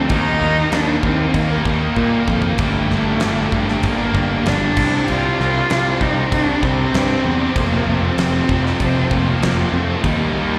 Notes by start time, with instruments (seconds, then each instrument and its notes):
Already playing: distorted electric guitar F2 C3, cello C4
0.09 picked electric bass D#2, distorted electric guitar D#3 G3 A#3 D#4, cello D#4, string machine A#4, kick, crash
0.13 string machine D#3 G5
0.40 picked electric bass D#2, distorted electric guitar D#3 G3 A#3
0.44 distorted electric guitar A#3 D#4
0.57 distorted electric guitar G3 A#3 D#4
0.72 picked electric bass D#2, distorted electric guitar D#3 G3 A#3 D#4, cello D4, snare, crash
0.76 distorted electric guitar D#4
1.03 picked electric bass D#2, distorted electric guitar D#3 G3 A#3 D#4, cello C4, kick
1.19 distorted electric guitar G3 A#3 D#4, muted distorted electric guitar stroke
1.34 picked electric bass D#2, cello A#3, kick, crash
1.50 distorted electric guitar G3 A#3 D#4
1.65 picked electric bass D#2, distorted electric guitar D#3 G3 A#3 D#4, cello A#3, kick
1.80 distorted electric guitar G3 A#3 D#4, muted distorted electric guitar stroke
1.96 picked electric bass A#2, distorted electric guitar D#3 G3 A#3 D#4, kick
2.12 distorted electric guitar G3 A#3 D#4
2.27 picked electric bass F2, distorted electric guitar D#3 G3 A#3 D#4, kick
2.42 distorted electric guitar G3 A#3 D#4, floor tom
2.58 picked electric bass G1, distorted electric guitar G2 D3 G3 A#3 D4, cello A3, string machine D5 A#5, kick, crash
2.90 picked electric bass G1, distorted electric guitar D3 G3 A#3 D4, snare
3.05 distorted electric guitar G3 A#3 D4
3.20 picked electric bass G1, distorted electric guitar G2 D3 G3 A#3, snare, crash
3.24 distorted electric guitar D4
3.52 picked electric bass G1, distorted electric guitar D3 G3 A#3 D4, kick
3.56 distorted electric guitar G2
3.66 distorted electric guitar D4, muted distorted electric guitar stroke, snare
3.70 distorted electric guitar G3 A#3
3.83 picked electric bass G1, cello A#3, kick, crash
3.98 distorted electric guitar G3 A#3 D4
4.13 picked electric bass G1, distorted electric guitar D3 G3 A#3 D4, kick
4.28 distorted electric guitar G3 A#3 D4, muted distorted electric guitar stroke
4.44 picked electric bass G1, distorted electric guitar G2 D3 G3 A#3 D4, cello D4, snare, crash
4.60 distorted electric guitar G3 A#3 D4
4.76 picked electric bass C2, distorted electric guitar C3 G3 C4 D4, string machine C5, kick, crash
4.92 distorted electric guitar G3 C4 D4
5.08 picked electric bass C2, distorted electric guitar C3 G3 C4 D4, cello F4, crash
5.38 picked electric bass C2, distorted electric guitar C3 G3 C4 D4, snare
5.54 distorted electric guitar G3 C4 D4
5.69 picked electric bass C2, distorted electric guitar C3 G3 C4 D4, snare, crash
6.00 picked electric bass C2, distorted electric guitar C3 G3 C4 D4, cello D#4, kick
6.16 distorted electric guitar G3 C4 D4, muted distorted electric guitar stroke
6.32 picked electric bass C2, cello D4, kick, crash
6.47 distorted electric guitar G3 C4 D4
6.61 picked electric bass C2, distorted electric guitar C3 G3 C4 D4, cello C4, kick
6.77 distorted electric guitar C4 D4, muted distorted electric guitar stroke
6.81 distorted electric guitar G3
6.93 picked electric bass G2, distorted electric guitar C3 G3 C4 D4, snare, crash
7.09 distorted electric guitar G3 C4 D4
7.22 picked electric bass E2, distorted electric guitar C3 G3 C4 D4
7.41 distorted electric guitar G3 C4 D4
7.56 picked electric bass F1, distorted electric guitar F2 C3 F3 A3 C4, cello A#3, string machine F4 A5, kick, crash
7.87 picked electric bass F1, distorted electric guitar C3 F3 A3 C4
8.02 distorted electric guitar F3 A3 C4, cello C4
8.17 picked electric bass F1, distorted electric guitar F2 C3 F3 A3 C4, snare, crash
8.49 picked electric bass F1, distorted electric guitar C3 F3 A3 C4, kick
8.53 distorted electric guitar F2
8.64 distorted electric guitar F3 A3 C4, muted distorted electric guitar stroke, snare
8.80 picked electric bass F1, cello C4, kick, crash
8.95 distorted electric guitar F3 A3 C4
9.10 picked electric bass F1, distorted electric guitar C3 F3 A3 C4, cello A#3, kick
9.26 distorted electric guitar F3 A3 C4, muted distorted electric guitar stroke
9.41 picked electric bass F1, distorted electric guitar F2 C3 F3 A3 C4, snare, crash
9.57 distorted electric guitar F3 A3 C4
9.72 picked electric bass F2, distorted electric guitar C3 F3 A3 C4, cello C4
9.89 distorted electric guitar F3 A3 C4
10.03 picked electric bass D#2, distorted electric guitar D#3 G3 A#3 D#4, cello G3, string machine D#4 A#4 G5, kick, crash
10.34 picked electric bass D#2, distorted electric guitar D#3 G3 A#3 D#4
10.51 distorted electric guitar G3 A#3 D#4